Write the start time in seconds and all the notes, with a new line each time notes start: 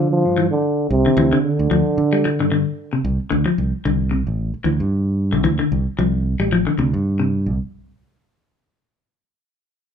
Already playing: D3
0.10 F3
0.25 G2
0.38 E3
0.51 D3
0.90 C2 C3
1.06 D3, muted fingered electric bass stroke
1.17 D2 E3
1.32 D3
1.42 D3
1.59 D2
1.71 D2 F3
1.86 muted fingered electric bass stroke
1.98 D3
2.13 G3
2.25 muted clean electric guitar stroke
2.39 G2 D3
2.52 D3
2.93 C3
3.05 C2
3.19 muted fingered electric bass stroke
3.30 D2 D3
3.46 F3
3.58 C2
3.85 C2 D3
4.11 C3
4.27 A1
4.54 muted fingered electric bass stroke
4.64 D2 E3
4.80 G2
5.33 C2 D3
5.44 D2 E3
5.59 D3
5.72 C2
5.99 C2 F3
6.40 A1 G3
6.53 F3
6.67 D3, muted fingered electric bass stroke
6.78 D2 C3
6.93 G2
7.20 C3
7.46 C2